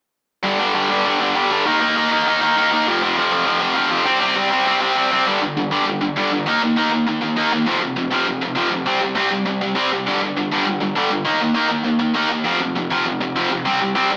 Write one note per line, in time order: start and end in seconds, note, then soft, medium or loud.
0.44 0.59 G2 medium
0.44 0.58 D3 medium
0.44 0.59 G3 loud
0.59 0.73 G2 medium
0.59 0.74 D3 medium
0.59 0.75 G3 medium
0.75 0.90 G2 medium
0.75 0.90 D3 loud
0.75 0.89 G3 loud
0.90 1.03 G2 medium
0.90 1.04 D3 medium
0.90 1.04 G3 medium
1.05 1.20 G2 medium
1.05 1.20 D3 medium
1.05 1.19 G3 medium
1.20 1.34 G2 medium
1.20 1.34 D3 medium
1.20 1.35 G3 medium
1.35 1.51 G2 medium
1.35 1.50 D3 medium
1.35 1.49 G3 medium
1.51 1.65 G2 medium
1.51 1.65 D3 medium
1.51 1.65 G3 medium
1.66 1.80 D#3 medium
1.66 1.80 A#3 loud
1.66 1.79 D#4 loud
1.80 1.95 D#3 medium
1.80 1.96 A#3 medium
1.80 1.96 D#4 medium
1.96 2.11 D#3 medium
1.96 2.11 A#3 medium
1.96 2.10 D#4 loud
2.11 2.25 D#3 medium
2.11 2.26 A#3 medium
2.11 2.27 D#4 medium
2.26 2.41 D#3 medium
2.26 2.41 A#3 medium
2.26 2.40 D#4 medium
2.41 2.55 D#3 medium
2.41 2.56 A#3 medium
2.41 2.57 D#4 loud
2.57 2.72 D#3 medium
2.57 2.71 A#3 medium
2.57 2.70 D#4 loud
2.72 2.86 D#3 medium
2.72 2.86 A#3 medium
2.72 2.86 D#4 medium
2.87 3.02 F2 medium
2.87 3.02 C3 loud
2.87 3.01 F3 medium
3.02 3.15 F2 medium
3.02 3.16 C3 medium
3.02 3.17 F3 medium
3.17 3.32 F2 medium
3.17 3.31 C3 medium
3.17 3.30 F3 medium
3.31 3.44 F2 medium
3.31 3.45 C3 medium
3.31 3.46 F3 medium
3.45 3.61 F2 medium
3.45 3.60 C3 medium
3.45 3.59 F3 medium
3.60 3.73 F2 medium
3.60 3.74 C3 medium
3.60 3.75 F3 medium
3.75 3.91 F2 medium
3.75 3.90 C3 loud
3.75 3.89 F3 medium
3.90 4.06 F2 medium
3.90 4.04 C3 medium
3.90 4.05 F3 medium
4.05 4.21 C3 medium
4.05 4.20 G3 medium
4.05 4.19 C4 medium
4.21 4.34 C3 medium
4.21 4.35 G3 medium
4.21 4.36 C4 medium
4.36 4.52 C3 medium
4.36 4.51 G3 loud
4.36 4.50 C4 loud
4.51 4.65 C3 medium
4.51 4.66 G3 medium
4.51 4.66 C4 medium
4.66 4.81 C3 medium
4.66 4.80 G3 medium
4.66 4.80 C4 medium
4.81 4.95 C3 medium
4.81 4.95 G3 medium
4.81 4.96 C4 medium
4.96 5.11 C3 medium
4.96 5.11 G3 medium
4.96 5.10 C4 medium
5.11 5.26 C3 medium
5.11 5.26 G3 medium
5.11 5.26 C4 medium
5.26 5.40 G2 medium
5.26 5.40 D3 medium
5.26 5.41 G3 medium
5.41 5.55 G2 medium
5.41 5.55 D3 medium
5.57 5.70 G2 medium
5.57 5.70 D3 medium
5.71 5.85 G2 medium
5.71 5.86 D3 medium
5.71 5.86 G3 loud
5.86 6.00 G2 medium
5.86 6.00 D3 medium
6.01 6.15 G2 medium
6.01 6.15 D3 medium
6.17 6.31 G2 medium
6.17 6.31 D3 medium
6.17 6.31 G3 medium
6.32 6.46 G2 medium
6.32 6.46 D3 medium
6.47 6.61 D#3 medium
6.47 6.61 A#3 medium
6.47 6.62 D#4 medium
6.63 6.76 D#3 medium
6.63 6.76 A#3 medium
6.77 6.91 D#3 medium
6.77 6.91 A#3 loud
6.77 6.92 D#4 loud
6.92 7.05 D#3 medium
6.92 7.06 A#3 medium
7.07 7.20 D#3 medium
7.07 7.21 A#3 medium
7.22 7.35 D#3 medium
7.22 7.36 A#3 medium
7.37 7.51 D#3 medium
7.37 7.51 A#3 medium
7.37 7.51 D#4 medium
7.53 7.66 D#3 medium
7.53 7.66 A#3 medium
7.67 7.80 F2 medium
7.67 7.80 C3 medium
7.67 7.81 F3 loud
7.81 7.95 F2 medium
7.81 7.95 C3 medium
7.96 8.10 F2 medium
7.96 8.10 C3 medium
8.11 8.25 F2 medium
8.11 8.25 C3 loud
8.11 8.26 F3 medium
8.26 8.40 F2 medium
8.26 8.40 C3 medium
8.41 8.54 F2 medium
8.41 8.55 C3 medium
8.55 8.69 F2 medium
8.55 8.70 C3 medium
8.55 8.71 F3 loud
8.70 8.84 F2 medium
8.70 8.85 C3 medium
8.86 9.00 C3 medium
8.86 9.00 G3 medium
8.86 9.01 C4 medium
9.01 9.14 C3 medium
9.01 9.15 G3 medium
9.15 9.29 C3 medium
9.15 9.30 G3 medium
9.15 9.30 C4 medium
9.31 9.44 C3 medium
9.31 9.45 G3 medium
9.46 9.59 C3 medium
9.46 9.60 G3 medium
9.61 9.74 C3 medium
9.61 9.74 G3 medium
9.75 9.90 C3 medium
9.75 9.90 G3 medium
9.75 9.90 C4 medium
9.92 10.05 C3 medium
9.92 10.05 G3 medium
10.06 10.20 G2 medium
10.06 10.20 D3 medium
10.06 10.21 G3 medium
10.21 10.35 G2 medium
10.21 10.35 D3 medium
10.36 10.50 G2 medium
10.36 10.50 D3 medium
10.51 10.65 G2 medium
10.51 10.65 D3 medium
10.51 10.66 G3 medium
10.66 10.79 G2 medium
10.66 10.79 D3 medium
10.81 10.94 G2 medium
10.81 10.94 D3 medium
10.95 11.10 G2 medium
10.95 11.10 D3 medium
10.95 11.10 G3 medium
11.11 11.24 G2 medium
11.11 11.24 D3 medium
11.25 11.39 D#3 medium
11.25 11.40 A#3 medium
11.25 11.40 D#4 medium
11.41 11.54 D#3 medium
11.41 11.54 A#3 medium
11.55 11.68 D#3 medium
11.55 11.68 A#3 medium
11.55 11.70 D#4 loud
11.69 11.83 D#3 medium
11.69 11.83 A#3 medium
11.84 11.98 D#3 medium
11.84 11.99 A#3 medium
12.00 12.13 D#3 medium
12.00 12.14 A#3 medium
12.14 12.29 D#3 medium
12.14 12.29 A#3 loud
12.14 12.30 D#4 medium
12.30 12.44 D#3 medium
12.30 12.44 A#3 medium
12.44 12.59 F2 medium
12.44 12.59 C3 loud
12.44 12.60 F3 medium
12.60 12.74 F2 medium
12.60 12.74 C3 medium
12.76 12.89 F2 medium
12.76 12.89 C3 medium
12.90 13.05 F2 medium
12.90 13.05 C3 medium
12.90 13.05 F3 loud
13.06 13.19 F2 medium
13.06 13.19 C3 medium
13.21 13.34 F2 medium
13.21 13.34 C3 medium
13.36 13.50 F2 medium
13.36 13.50 C3 loud
13.36 13.50 F3 loud
13.51 13.64 F2 medium
13.51 13.64 C3 medium
13.65 13.79 C3 medium
13.65 13.80 G3 medium
13.65 13.80 C4 medium
13.80 13.94 C3 medium
13.80 13.94 G3 medium
13.95 14.10 C3 medium
13.95 14.10 G3 loud
13.95 14.10 C4 loud
14.11 14.17 C3 medium
14.11 14.17 G3 medium